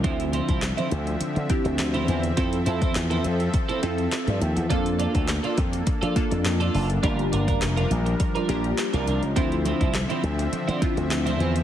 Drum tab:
HH |xxxxxxxxxxxxxxxx|xxxxxxxxxxxxxxxx|xxxxxxxxxxxxxxox|xxxxxxxxxxxxxxxx|
CP |----x-------x---|----x-------x---|----x-------x---|----x-------x---|
SD |----o-------o---|----o-------o---|----o-------o---|----o-------o---|
BD |o--o------o-----|o--o----o-------|o--o--o-o-o-----|o--o----o-------|

HH |xxxxxxxxxxxxxxxx|
CP |----x-------x---|
SD |----o-------o---|
BD |o--o------o-----|